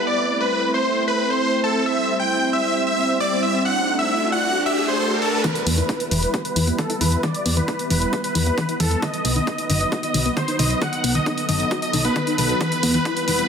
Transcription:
0.07 0.37 D5 loud
0.40 0.71 B4 medium
0.74 1.04 C5 medium
1.08 1.28 B4 medium
1.30 1.60 C5 loud
1.64 1.84 A4 medium
1.86 2.16 E5 loud
1.86 riser medium
2.20 2.50 G5 medium
2.53 2.83 E5 medium
2.87 3.17 E5 loud
3.20 3.40 D5 medium
3.43 3.63 E5 medium
3.65 3.95 F#5 loud
3.99 4.29 E5 medium
4.32 4.62 F#5 medium
4.66 4.86 E5 medium
4.88 5.18 C5 loud
5.22 5.42 A4 medium
5.44 5.55 E3 medium
5.44 5.74 B4 loud
5.44 kick loud
5.44 closed hi-hat medium
5.55 closed hi-hat medium
5.67 5.82 E2 loud
5.67 5.77 B3 medium
5.67 open hi-hat loud
5.78 5.85 E3 medium
5.78 6.08 B4 medium
5.78 closed hi-hat medium
5.89 5.96 E4 medium
5.89 kick loud
5.89 closed hi-hat medium
6.00 closed hi-hat medium
6.11 6.27 E1 medium
6.11 6.22 E3 medium
6.11 6.41 B4 medium
6.11 open hi-hat medium
6.23 closed hi-hat medium
6.34 6.44 G4 medium
6.34 kick loud
6.34 closed hi-hat medium
6.45 6.75 B4 medium
6.45 closed hi-hat medium
6.56 6.72 E2 medium
6.56 6.67 E3 medium
6.56 open hi-hat loud
6.67 6.75 B3 medium
6.67 closed hi-hat medium
6.78 6.86 E3 medium
6.78 6.99 A4 medium
6.78 kick loud
6.78 closed hi-hat medium
6.90 6.94 E4 medium
6.90 closed hi-hat medium
7.01 7.16 E2 loud
7.01 7.08 E3 medium
7.01 7.21 B4 medium
7.01 open hi-hat medium
7.12 closed hi-hat medium
7.23 7.34 E3 medium
7.23 7.53 D5 medium
7.23 kick loud
7.23 closed hi-hat medium
7.34 closed hi-hat medium
7.46 7.61 E2 loud
7.46 7.56 B3 medium
7.46 open hi-hat loud
7.57 7.64 E3 medium
7.57 7.87 B4 medium
7.57 closed hi-hat medium
7.68 7.76 E4 medium
7.68 kick loud
7.68 closed hi-hat medium
7.79 closed hi-hat medium
7.90 8.06 E1 medium
7.90 8.01 E3 medium
7.90 8.21 B4 medium
7.90 open hi-hat medium
8.02 closed hi-hat medium
8.13 8.24 G4 medium
8.13 kick loud
8.13 closed hi-hat medium
8.24 8.44 B4 medium
8.24 closed hi-hat medium
8.35 8.51 E2 medium
8.35 8.46 E3 medium
8.35 open hi-hat loud
8.46 8.54 B3 medium
8.46 8.77 B4 loud
8.46 closed hi-hat medium
8.58 8.65 E3 medium
8.58 kick loud
8.58 closed hi-hat medium
8.69 8.73 E4 medium
8.69 closed hi-hat medium
8.80 8.95 E2 loud
8.80 8.88 E3 medium
8.80 9.00 A4 medium
8.80 open hi-hat loud
8.91 closed hi-hat medium
9.02 9.13 D#3 medium
9.02 9.32 D#5 loud
9.02 kick loud
9.02 closed hi-hat medium
9.14 closed hi-hat medium
9.25 9.40 B1 loud
9.25 9.35 B3 medium
9.25 open hi-hat loud
9.36 9.44 D#3 medium
9.36 9.66 D#5 medium
9.36 closed hi-hat medium
9.47 9.55 D#4 medium
9.47 kick loud
9.47 closed hi-hat medium
9.58 closed hi-hat medium
9.70 9.85 F#1 medium
9.70 9.80 D#3 medium
9.70 10.00 D#5 medium
9.70 open hi-hat medium
9.81 closed hi-hat medium
9.92 10.03 F#4 medium
9.92 kick loud
9.92 closed hi-hat medium
10.03 10.33 D#5 medium
10.03 closed hi-hat medium
10.14 10.30 B1 medium
10.14 10.25 D#3 medium
10.14 open hi-hat loud
10.26 10.33 B3 medium
10.26 closed hi-hat medium
10.37 10.44 D#3 medium
10.37 10.57 C5 medium
10.37 kick loud
10.37 closed hi-hat medium
10.48 10.52 D#4 medium
10.48 closed hi-hat medium
10.59 10.75 B1 loud
10.59 10.67 D#3 medium
10.59 10.79 D#5 medium
10.59 open hi-hat loud
10.70 closed hi-hat medium
10.82 10.92 D#3 medium
10.82 11.12 F#5 medium
10.82 kick loud
10.82 closed hi-hat medium
10.93 closed hi-hat medium
11.04 11.19 B1 loud
11.04 11.15 B3 medium
11.04 open hi-hat loud
11.15 11.23 D#3 medium
11.15 11.45 D#5 medium
11.15 closed hi-hat medium
11.26 11.34 D#4 medium
11.26 kick loud
11.26 closed hi-hat medium
11.38 closed hi-hat medium
11.49 11.64 F#1 medium
11.49 11.59 D#3 medium
11.49 11.79 D#5 medium
11.49 open hi-hat medium
11.60 closed hi-hat medium
11.71 11.82 F#4 medium
11.71 kick loud
11.71 closed hi-hat medium
11.82 12.02 D#5 medium
11.82 closed hi-hat medium
11.93 12.09 B1 medium
11.93 12.04 D#3 medium
11.93 open hi-hat loud
12.05 12.12 B3 medium
12.05 12.35 B4 medium
12.05 closed hi-hat medium
12.16 12.23 D#3 medium
12.16 kick loud
12.16 closed hi-hat medium
12.27 12.32 D#4 medium
12.27 closed hi-hat medium
12.38 12.54 B1 medium
12.38 12.46 D#3 medium
12.38 12.58 B4 medium
12.38 open hi-hat loud
12.49 closed hi-hat medium
12.61 12.71 E3 medium
12.61 12.91 B4 loud
12.61 kick loud
12.61 closed hi-hat medium
12.61 riser medium
12.72 closed hi-hat medium
12.83 12.98 E2 loud
12.83 12.94 B3 medium
12.83 open hi-hat loud
12.94 13.02 E3 medium
12.94 13.24 B4 medium
12.94 closed hi-hat medium
13.05 13.13 E4 medium
13.05 kick loud
13.05 closed hi-hat medium
13.17 closed hi-hat medium
13.28 13.43 E1 medium
13.28 13.38 E3 medium
13.28 13.48 B4 medium
13.28 open hi-hat medium
13.39 closed hi-hat medium

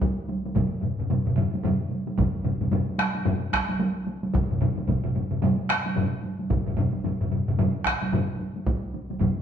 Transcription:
0.02 taiko loud
0.02 taiko high medium
0.29 taiko high medium
0.45 taiko high medium
0.55 taiko medium
0.55 taiko low-mid medium
0.55 taiko mid medium
0.55 taiko high medium
0.82 taiko low-mid medium
0.82 taiko mid medium
0.82 taiko high soft
0.99 taiko low-mid medium
0.99 taiko mid medium
1.10 taiko low-mid medium
1.10 taiko mid medium
1.10 taiko high medium
1.26 taiko low-mid medium
1.26 taiko mid medium
1.37 taiko low-mid loud
1.37 taiko mid loud
1.37 taiko high soft
1.54 taiko high medium
1.63 taiko low-mid medium
1.63 taiko mid loud
1.63 taiko high medium
1.92 taiko high soft
2.07 taiko high medium
2.18 taiko medium
2.18 taiko low-mid medium
2.18 taiko mid loud
2.18 taiko high medium
2.45 taiko low-mid medium
2.45 taiko mid medium
2.45 taiko high soft
2.61 taiko low-mid medium
2.61 taiko mid medium
2.61 taiko high medium
2.71 taiko low-mid medium
2.71 taiko mid medium
2.71 taiko high medium
2.98 taiko rim medium
2.98 taiko high medium
3.15 taiko high soft
3.25 taiko low-mid loud
3.25 taiko mid loud
3.25 taiko high medium
3.52 taiko rim medium
3.52 taiko medium
3.52 taiko high medium
3.69 taiko high medium
3.79 taiko high medium
4.07 taiko high medium
4.23 taiko high medium
4.34 taiko loud
4.34 taiko low-mid medium
4.34 taiko mid medium
4.34 taiko high medium
4.51 taiko low-mid medium
4.51 taiko mid medium
4.61 taiko low-mid loud
4.61 taiko mid medium
4.61 taiko high medium
4.78 taiko high medium
4.88 taiko medium
4.88 taiko low-mid medium
4.88 taiko mid medium
4.88 taiko high medium
5.04 taiko low-mid medium
5.04 taiko mid medium
5.15 taiko low-mid medium
5.15 taiko mid medium
5.15 taiko high soft
5.31 taiko low-mid medium
5.31 taiko mid medium
5.42 taiko low-mid medium
5.42 taiko mid loud
5.42 taiko high medium
5.69 taiko rim medium
5.69 taiko high soft
5.86 taiko high medium
5.96 taiko low-mid loud
5.96 taiko mid medium
5.96 taiko high medium
6.23 taiko high soft
6.39 taiko high soft
6.50 taiko medium
6.50 taiko low-mid medium
6.50 taiko mid medium
6.50 taiko high medium
6.66 taiko low-mid medium
6.66 taiko mid medium
6.77 taiko low-mid loud
6.77 taiko mid medium
6.77 taiko high soft
6.93 taiko high medium
7.04 taiko low-mid medium
7.04 taiko mid medium
7.04 taiko high medium
7.21 taiko low-mid medium
7.21 taiko mid medium
7.31 taiko low-mid medium
7.31 taiko mid medium
7.31 taiko high soft
7.48 taiko low-mid medium
7.48 taiko mid medium
7.58 taiko low-mid loud
7.58 taiko mid loud
7.58 taiko high medium
7.85 taiko rim medium
7.85 taiko medium
7.85 taiko high soft
8.01 taiko high medium
8.12 taiko low-mid loud
8.12 taiko mid loud
8.12 taiko high medium
8.39 taiko high soft
8.56 taiko high soft
8.66 taiko loud
8.66 taiko high medium
8.94 taiko high soft
9.10 taiko high medium
9.20 taiko medium
9.20 taiko low-mid loud
9.20 taiko mid loud
9.20 taiko high medium

